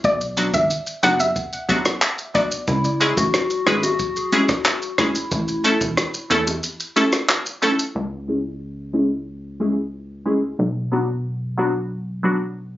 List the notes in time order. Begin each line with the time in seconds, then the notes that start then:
0.04 B1 D5, kick, shaker
0.21 shaker
0.37 F#3 B3 D4 F#4, closed hi-hat, shaker
0.54 G#1 E5, kick, shaker
0.70 shaker
0.87 shaker
1.03 F#1 F#3 B3 D4 F#4 F#5, closed hi-hat, shaker
1.19 E5, high bongo, shaker
1.36 kick, shaker
1.53 shaker
1.69 F#3 B3 D4 F#4, kick, closed hi-hat, high bongo, shaker
1.85 cross-stick, shaker
2.02 clap, shaker
2.19 shaker
2.34 F#3 B3 D4 F#4 D5, kick, closed hi-hat, low bongo, shaker
2.51 shaker
2.68 C#2 E4, kick, shaker
2.84 shaker
3.00 G#3 C#4 E4 G#4, closed hi-hat, shaker
3.17 A1 F#4, kick, shaker
3.34 cross-stick, shaker
3.50 shaker
3.66 G#1 G#3 C#4 E4 G#4 B4, cross-stick, closed hi-hat, shaker
3.83 F#4, high bongo, shaker
3.99 kick, shaker
4.16 shaker
4.32 G#3 C#4 E4 G#4, closed hi-hat, high bongo, shaker
4.49 kick, cross-stick, shaker
4.66 cross-stick, clap, shaker
4.82 shaker
4.98 G#3 C#4 E4 G#4, kick, cross-stick, closed hi-hat, low bongo, shaker
5.15 shaker
5.31 A1, kick, shaker
5.48 shaker
5.64 A3 C#4 E4 A4, closed hi-hat, shaker
5.81 E1, kick, shaker
5.97 cross-stick, shaker
6.14 shaker
6.30 E2 A3 C#4 E4 A4, closed hi-hat, shaker
6.47 high bongo, shaker
6.63 shaker
6.80 shaker
6.96 A3 C#4 E4 A4, closed hi-hat, high bongo, shaker
7.12 cross-stick, shaker
7.29 cross-stick, clap, shaker
7.46 shaker
7.62 A3 C#4 E4 A4, closed hi-hat, low bongo, shaker
7.79 shaker
7.95 C#2
8.28 G#3 C#4 E4 G#4
8.93 G#3 C#4 E4 G#4
9.60 G#3 C#4 E4 G#4
10.26 G#3 C#4 E4 G#4
10.59 B1
10.92 F#3 B3 D4 F#4
11.57 F#3 B3 D4 F#4
12.23 F#3 B3 D4 F#4